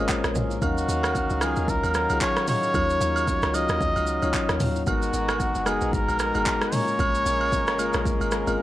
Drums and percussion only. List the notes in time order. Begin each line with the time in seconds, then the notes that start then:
0.09 kick, clap, low woodblock, shaker
0.24 cross-stick, shaker
0.35 mid tom, shaker
0.51 shaker
0.62 kick, high agogo, shaker
0.78 shaker
0.89 shaker
1.03 cross-stick, high agogo, shaker
1.15 kick, shaker
1.30 shaker
1.41 cross-stick, high agogo, shaker
1.56 shaker
1.68 kick, shaker
1.83 high agogo, shaker
1.94 cross-stick, shaker
2.10 high agogo, shaker
2.21 kick, clap, shaker
2.37 cross-stick, shaker
2.48 mid tom, open hi-hat, shaker
2.63 shaker
2.74 kick, high agogo, shaker
2.90 shaker
3.01 shaker
3.16 high agogo, shaker
3.27 kick, shaker
3.43 cross-stick, shaker
3.54 high agogo, shaker
3.69 cross-stick, shaker
3.81 kick, shaker
3.96 high agogo, shaker
4.07 shaker
4.22 high agogo, shaker
4.34 kick, clap, shaker
4.49 cross-stick, shaker
4.60 mid tom, open hi-hat, shaker
4.76 shaker
4.87 kick, high agogo, shaker
5.02 shaker
5.14 shaker
5.28 cross-stick, high agogo, shaker
5.40 kick, shaker
5.55 shaker
5.66 cross-stick, high agogo, shaker
5.81 shaker
5.93 kick, shaker
6.08 high agogo, shaker
6.19 cross-stick, shaker
6.35 high agogo, shaker
6.46 kick, clap, shaker
6.61 cross-stick, shaker
6.72 mid tom, open hi-hat, shaker
6.88 shaker
6.99 kick, high agogo, shaker
7.15 shaker
7.26 shaker
7.41 high agogo
7.52 kick, shaker
7.67 cross-stick, shaker
7.79 high agogo, shaker
7.94 cross-stick, shaker
8.06 kick, shaker
8.21 high agogo, shaker
8.31 cross-stick, shaker
8.47 high agogo, shaker